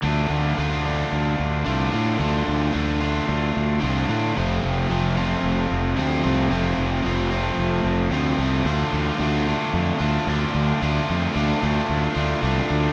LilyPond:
<<
  \new Staff \with { instrumentName = "Overdriven electric guitar" } { \time 4/4 \key d \minor \tempo 4 = 111 <d a d' f'>4 <d a d' f'>8 <a d' f'>4. <d a d' f'>8 <a d' f'>8 | <d a d' f'>4 <d a d' f'>8 <a d' f'>4. <d a d' f'>8 <a d' f'>8 | <f, c f a c' f'>4 <f a c' f'>8 <f a c' f'>4. <f, c f a c' f'>8 <f a c' f'>8 | <f, c f a c' f'>4 <f a c' f'>8 <f a c' f'>4. <f, c f a c' f'>8 <f a c' f'>8 |
<d a d' f'>4 <d a d' f'>8 <a d' f'>4 <a d' f'>8 <d a d' f'>4 | <d a d' f'>4 <d a d' f'>8 <a d' f'>4 <a d' f'>8 <d a d' f'>4 | }
  \new Staff \with { instrumentName = "Fingered electric bass" } { \clef bass \time 4/4 \key d \minor d,8 d,8 d,4 d,8 d,8 c,8 a,8 | d,8 d,8 d,4 d,8 d,8 c,8 a,8 | f,,8 f,,8 f,,4 f,,8 f,,8 d,8 c,8 | f,,8 f,,8 f,,4 f,,8 f,,8 d,8 c,8 |
d,8 d,8 d,4 f,8 d,8 d,8 d,8 | d,8 f,8 d,8 d,8 d,8 d,8 c,8 d,8 | }
>>